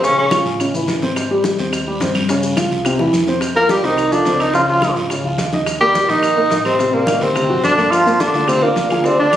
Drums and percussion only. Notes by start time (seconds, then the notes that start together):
0.03 high bongo, high conga, maracas
0.18 high bongo, high conga
0.31 high bongo, high conga, short guiro, claves, maracas
0.46 high bongo, high conga, short guiro, maracas
0.60 high bongo, high conga, long guiro, claves, maracas
0.74 high conga, maracas
0.88 high bongo, low bongo, high conga, short guiro, maracas
1.02 high bongo, high conga, short guiro, maracas
1.16 high bongo, high conga, long guiro, claves, maracas
1.30 high bongo, high conga
1.44 high bongo, high conga, short guiro, maracas
1.58 high bongo, high conga, short guiro, maracas
1.72 high bongo, high conga, long guiro, claves, maracas
1.87 high conga
2.00 high bongo, low bongo, high conga, short guiro, maracas
2.14 high bongo, high conga, short guiro, claves, maracas
2.29 high bongo, high conga, long guiro, maracas
2.43 high bongo, high conga, maracas
2.57 high bongo, high conga, short guiro, claves, maracas
2.71 high bongo, high conga, short guiro, maracas
2.85 high bongo, high conga, long guiro, claves, maracas
2.99 high bongo, high conga
3.13 low bongo, high conga, short guiro, maracas
3.27 low bongo, high conga, short guiro, maracas
3.41 high bongo, high conga, long guiro, claves, maracas
3.55 high bongo, high conga
3.69 high bongo, high conga, short guiro, maracas
3.83 high bongo, high conga, short guiro, maracas
3.97 high bongo, high conga, long guiro, claves, maracas
4.12 high conga, maracas
4.25 high bongo, low bongo, high conga, short guiro, maracas
4.39 high bongo, short guiro, claves, maracas
4.54 high bongo, high conga, long guiro, maracas
4.68 high bongo, high conga
4.82 high bongo, high conga, short guiro, claves, maracas
4.96 high bongo, high conga, short guiro, maracas
5.10 high bongo, high conga, long guiro, claves, maracas
5.24 high conga
5.38 high bongo, low bongo, high conga, short guiro, maracas
5.53 high bongo, high conga, short guiro, maracas
5.66 high bongo, high conga, long guiro, claves, maracas
5.81 high conga
5.94 high bongo, high conga, short guiro, maracas
6.09 high conga, short guiro, maracas
6.23 high bongo, high conga, long guiro, claves, maracas
6.37 high conga
6.50 high bongo, low bongo, high conga, short guiro, maracas
6.65 high bongo, high conga, short guiro, claves, maracas
6.79 high bongo, high conga, maracas
6.93 high bongo, high conga
7.07 high bongo, high conga, short guiro, claves, maracas
7.21 high bongo, high conga, short guiro, maracas
7.35 high bongo, high conga, long guiro, claves, maracas
7.50 high conga
7.64 high bongo, low bongo, high conga, short guiro, maracas
7.78 high bongo, high conga, short guiro, maracas
7.92 high bongo, high conga, long guiro, claves, maracas
8.06 high bongo, high conga, maracas
8.20 high bongo, high conga, short guiro, maracas
8.34 high bongo, short guiro, maracas
8.48 high bongo, high conga, low conga, long guiro, claves, maracas
8.63 high conga
8.76 high bongo, low bongo, high conga, short guiro, maracas
8.90 high bongo, short guiro, claves, maracas
9.04 high bongo, high conga, long guiro, maracas
9.19 high bongo, high conga
9.32 high bongo, high conga, short guiro, claves, maracas